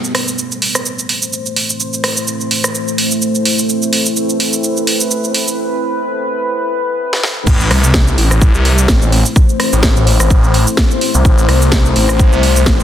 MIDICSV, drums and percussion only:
0, 0, Header, 1, 2, 480
1, 0, Start_track
1, 0, Key_signature, 0, "minor"
1, 0, Tempo, 472441
1, 1830, Time_signature, 4, 2, 24, 8
1, 13038, End_track
2, 0, Start_track
2, 0, Title_t, "Drums"
2, 44, Note_on_c, 9, 82, 34
2, 146, Note_off_c, 9, 82, 0
2, 150, Note_on_c, 9, 37, 61
2, 150, Note_on_c, 9, 46, 103
2, 251, Note_off_c, 9, 37, 0
2, 251, Note_off_c, 9, 46, 0
2, 284, Note_on_c, 9, 82, 65
2, 385, Note_off_c, 9, 82, 0
2, 391, Note_on_c, 9, 82, 58
2, 492, Note_off_c, 9, 82, 0
2, 524, Note_on_c, 9, 82, 33
2, 626, Note_off_c, 9, 82, 0
2, 630, Note_on_c, 9, 46, 103
2, 731, Note_off_c, 9, 46, 0
2, 763, Note_on_c, 9, 37, 62
2, 764, Note_on_c, 9, 82, 67
2, 865, Note_off_c, 9, 37, 0
2, 865, Note_off_c, 9, 82, 0
2, 870, Note_on_c, 9, 82, 57
2, 972, Note_off_c, 9, 82, 0
2, 1004, Note_on_c, 9, 82, 34
2, 1106, Note_off_c, 9, 82, 0
2, 1109, Note_on_c, 9, 46, 106
2, 1211, Note_off_c, 9, 46, 0
2, 1244, Note_on_c, 9, 82, 69
2, 1345, Note_off_c, 9, 82, 0
2, 1350, Note_on_c, 9, 82, 57
2, 1452, Note_off_c, 9, 82, 0
2, 1484, Note_on_c, 9, 82, 33
2, 1586, Note_off_c, 9, 82, 0
2, 1590, Note_on_c, 9, 46, 106
2, 1691, Note_off_c, 9, 46, 0
2, 1724, Note_on_c, 9, 82, 68
2, 1826, Note_off_c, 9, 82, 0
2, 1830, Note_on_c, 9, 82, 54
2, 1932, Note_off_c, 9, 82, 0
2, 1964, Note_on_c, 9, 82, 33
2, 2066, Note_off_c, 9, 82, 0
2, 2070, Note_on_c, 9, 37, 62
2, 2070, Note_on_c, 9, 46, 108
2, 2172, Note_off_c, 9, 37, 0
2, 2172, Note_off_c, 9, 46, 0
2, 2205, Note_on_c, 9, 82, 64
2, 2306, Note_off_c, 9, 82, 0
2, 2311, Note_on_c, 9, 82, 58
2, 2413, Note_off_c, 9, 82, 0
2, 2445, Note_on_c, 9, 82, 33
2, 2546, Note_off_c, 9, 82, 0
2, 2550, Note_on_c, 9, 46, 106
2, 2652, Note_off_c, 9, 46, 0
2, 2684, Note_on_c, 9, 37, 61
2, 2684, Note_on_c, 9, 82, 67
2, 2785, Note_off_c, 9, 37, 0
2, 2786, Note_off_c, 9, 82, 0
2, 2790, Note_on_c, 9, 82, 55
2, 2892, Note_off_c, 9, 82, 0
2, 2924, Note_on_c, 9, 82, 33
2, 3026, Note_off_c, 9, 82, 0
2, 3030, Note_on_c, 9, 46, 108
2, 3132, Note_off_c, 9, 46, 0
2, 3164, Note_on_c, 9, 82, 67
2, 3266, Note_off_c, 9, 82, 0
2, 3270, Note_on_c, 9, 82, 57
2, 3372, Note_off_c, 9, 82, 0
2, 3404, Note_on_c, 9, 82, 33
2, 3506, Note_off_c, 9, 82, 0
2, 3510, Note_on_c, 9, 46, 109
2, 3611, Note_off_c, 9, 46, 0
2, 3644, Note_on_c, 9, 82, 67
2, 3746, Note_off_c, 9, 82, 0
2, 3751, Note_on_c, 9, 82, 52
2, 3853, Note_off_c, 9, 82, 0
2, 3884, Note_on_c, 9, 82, 32
2, 3986, Note_off_c, 9, 82, 0
2, 3990, Note_on_c, 9, 46, 114
2, 4091, Note_off_c, 9, 46, 0
2, 4124, Note_on_c, 9, 82, 64
2, 4226, Note_off_c, 9, 82, 0
2, 4230, Note_on_c, 9, 82, 56
2, 4332, Note_off_c, 9, 82, 0
2, 4364, Note_on_c, 9, 82, 32
2, 4466, Note_off_c, 9, 82, 0
2, 4470, Note_on_c, 9, 46, 112
2, 4571, Note_off_c, 9, 46, 0
2, 4604, Note_on_c, 9, 82, 64
2, 4706, Note_off_c, 9, 82, 0
2, 4711, Note_on_c, 9, 82, 54
2, 4812, Note_off_c, 9, 82, 0
2, 4845, Note_on_c, 9, 82, 34
2, 4946, Note_off_c, 9, 82, 0
2, 4950, Note_on_c, 9, 46, 113
2, 5052, Note_off_c, 9, 46, 0
2, 5085, Note_on_c, 9, 82, 65
2, 5186, Note_off_c, 9, 82, 0
2, 5191, Note_on_c, 9, 82, 56
2, 5293, Note_off_c, 9, 82, 0
2, 5325, Note_on_c, 9, 82, 34
2, 5426, Note_off_c, 9, 82, 0
2, 5430, Note_on_c, 9, 46, 111
2, 5532, Note_off_c, 9, 46, 0
2, 5565, Note_on_c, 9, 82, 65
2, 5666, Note_off_c, 9, 82, 0
2, 7244, Note_on_c, 9, 38, 54
2, 7345, Note_off_c, 9, 38, 0
2, 7350, Note_on_c, 9, 38, 81
2, 7452, Note_off_c, 9, 38, 0
2, 7484, Note_on_c, 9, 45, 81
2, 7585, Note_off_c, 9, 45, 0
2, 7590, Note_on_c, 9, 36, 118
2, 7591, Note_on_c, 9, 49, 105
2, 7591, Note_on_c, 9, 82, 60
2, 7692, Note_off_c, 9, 36, 0
2, 7692, Note_off_c, 9, 49, 0
2, 7693, Note_off_c, 9, 82, 0
2, 7725, Note_on_c, 9, 82, 35
2, 7827, Note_off_c, 9, 82, 0
2, 7831, Note_on_c, 9, 37, 65
2, 7831, Note_on_c, 9, 46, 109
2, 7932, Note_off_c, 9, 37, 0
2, 7932, Note_off_c, 9, 46, 0
2, 7965, Note_on_c, 9, 82, 70
2, 8066, Note_on_c, 9, 38, 127
2, 8067, Note_off_c, 9, 82, 0
2, 8070, Note_on_c, 9, 36, 107
2, 8072, Note_on_c, 9, 82, 58
2, 8167, Note_off_c, 9, 38, 0
2, 8172, Note_off_c, 9, 36, 0
2, 8173, Note_off_c, 9, 82, 0
2, 8205, Note_on_c, 9, 82, 35
2, 8307, Note_off_c, 9, 82, 0
2, 8310, Note_on_c, 9, 46, 91
2, 8412, Note_off_c, 9, 46, 0
2, 8444, Note_on_c, 9, 37, 64
2, 8445, Note_on_c, 9, 82, 69
2, 8546, Note_off_c, 9, 37, 0
2, 8546, Note_off_c, 9, 82, 0
2, 8550, Note_on_c, 9, 36, 117
2, 8551, Note_on_c, 9, 82, 59
2, 8652, Note_off_c, 9, 36, 0
2, 8652, Note_off_c, 9, 82, 0
2, 8684, Note_on_c, 9, 82, 36
2, 8786, Note_off_c, 9, 82, 0
2, 8790, Note_on_c, 9, 46, 107
2, 8891, Note_off_c, 9, 46, 0
2, 8924, Note_on_c, 9, 82, 70
2, 9025, Note_on_c, 9, 38, 127
2, 9026, Note_off_c, 9, 82, 0
2, 9030, Note_on_c, 9, 36, 109
2, 9031, Note_on_c, 9, 82, 61
2, 9127, Note_off_c, 9, 38, 0
2, 9132, Note_off_c, 9, 36, 0
2, 9133, Note_off_c, 9, 82, 0
2, 9164, Note_on_c, 9, 82, 35
2, 9266, Note_off_c, 9, 82, 0
2, 9270, Note_on_c, 9, 46, 93
2, 9372, Note_off_c, 9, 46, 0
2, 9405, Note_on_c, 9, 82, 70
2, 9506, Note_off_c, 9, 82, 0
2, 9510, Note_on_c, 9, 36, 122
2, 9511, Note_on_c, 9, 82, 57
2, 9611, Note_off_c, 9, 36, 0
2, 9612, Note_off_c, 9, 82, 0
2, 9644, Note_on_c, 9, 82, 33
2, 9746, Note_off_c, 9, 82, 0
2, 9750, Note_on_c, 9, 37, 63
2, 9750, Note_on_c, 9, 46, 113
2, 9852, Note_off_c, 9, 37, 0
2, 9852, Note_off_c, 9, 46, 0
2, 9885, Note_on_c, 9, 82, 67
2, 9985, Note_on_c, 9, 38, 127
2, 9986, Note_off_c, 9, 82, 0
2, 9990, Note_on_c, 9, 36, 110
2, 9991, Note_on_c, 9, 82, 58
2, 10087, Note_off_c, 9, 38, 0
2, 10091, Note_off_c, 9, 36, 0
2, 10092, Note_off_c, 9, 82, 0
2, 10125, Note_on_c, 9, 82, 34
2, 10226, Note_off_c, 9, 82, 0
2, 10230, Note_on_c, 9, 46, 96
2, 10332, Note_off_c, 9, 46, 0
2, 10364, Note_on_c, 9, 37, 65
2, 10365, Note_on_c, 9, 82, 69
2, 10466, Note_off_c, 9, 37, 0
2, 10467, Note_off_c, 9, 82, 0
2, 10470, Note_on_c, 9, 36, 122
2, 10471, Note_on_c, 9, 82, 58
2, 10571, Note_off_c, 9, 36, 0
2, 10572, Note_off_c, 9, 82, 0
2, 10604, Note_on_c, 9, 82, 34
2, 10706, Note_off_c, 9, 82, 0
2, 10710, Note_on_c, 9, 46, 114
2, 10811, Note_off_c, 9, 46, 0
2, 10844, Note_on_c, 9, 82, 68
2, 10945, Note_on_c, 9, 38, 127
2, 10946, Note_off_c, 9, 82, 0
2, 10950, Note_on_c, 9, 36, 110
2, 10951, Note_on_c, 9, 82, 59
2, 11046, Note_off_c, 9, 38, 0
2, 11051, Note_off_c, 9, 36, 0
2, 11052, Note_off_c, 9, 82, 0
2, 11084, Note_on_c, 9, 82, 35
2, 11186, Note_off_c, 9, 82, 0
2, 11190, Note_on_c, 9, 46, 99
2, 11291, Note_off_c, 9, 46, 0
2, 11324, Note_on_c, 9, 82, 69
2, 11426, Note_off_c, 9, 82, 0
2, 11430, Note_on_c, 9, 36, 124
2, 11431, Note_on_c, 9, 82, 55
2, 11531, Note_off_c, 9, 36, 0
2, 11532, Note_off_c, 9, 82, 0
2, 11564, Note_on_c, 9, 82, 33
2, 11666, Note_off_c, 9, 82, 0
2, 11670, Note_on_c, 9, 37, 67
2, 11670, Note_on_c, 9, 46, 112
2, 11772, Note_off_c, 9, 37, 0
2, 11772, Note_off_c, 9, 46, 0
2, 11804, Note_on_c, 9, 82, 66
2, 11905, Note_on_c, 9, 38, 127
2, 11906, Note_off_c, 9, 82, 0
2, 11910, Note_on_c, 9, 36, 112
2, 11911, Note_on_c, 9, 82, 55
2, 12007, Note_off_c, 9, 38, 0
2, 12011, Note_off_c, 9, 36, 0
2, 12012, Note_off_c, 9, 82, 0
2, 12044, Note_on_c, 9, 82, 33
2, 12146, Note_off_c, 9, 82, 0
2, 12150, Note_on_c, 9, 46, 98
2, 12252, Note_off_c, 9, 46, 0
2, 12284, Note_on_c, 9, 37, 67
2, 12284, Note_on_c, 9, 82, 66
2, 12385, Note_off_c, 9, 37, 0
2, 12386, Note_off_c, 9, 82, 0
2, 12390, Note_on_c, 9, 36, 123
2, 12391, Note_on_c, 9, 82, 57
2, 12491, Note_off_c, 9, 36, 0
2, 12492, Note_off_c, 9, 82, 0
2, 12524, Note_on_c, 9, 82, 34
2, 12626, Note_off_c, 9, 82, 0
2, 12630, Note_on_c, 9, 46, 113
2, 12731, Note_off_c, 9, 46, 0
2, 12764, Note_on_c, 9, 82, 68
2, 12864, Note_on_c, 9, 38, 122
2, 12866, Note_off_c, 9, 82, 0
2, 12870, Note_on_c, 9, 36, 111
2, 12870, Note_on_c, 9, 82, 56
2, 12966, Note_off_c, 9, 38, 0
2, 12971, Note_off_c, 9, 36, 0
2, 12972, Note_off_c, 9, 82, 0
2, 13004, Note_on_c, 9, 82, 34
2, 13038, Note_off_c, 9, 82, 0
2, 13038, End_track
0, 0, End_of_file